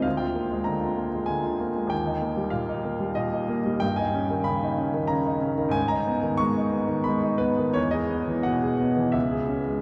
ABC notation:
X:1
M:3/4
L:1/16
Q:1/4=93
K:Eb
V:1 name="Grand piano"
f g3 b4 a4 | g4 f4 e2 z2 | [K:G#m] =g ^g3 b4 a4 | g a3 c'4 b2 B2 |
c d3 f4 e4 |]
V:2 name="Grand piano"
D,, F B, A, D, F B, A, D, F B, A, | E,, E B, G, B,, E B, G, B,, E B, G, | [K:G#m] =G,, D C D, C, D C D, C, D C D, | G,, D B, D, G, D B, D, G, D B, D, |
E,, G B, E, B,, G B, E, C,, G C G, |]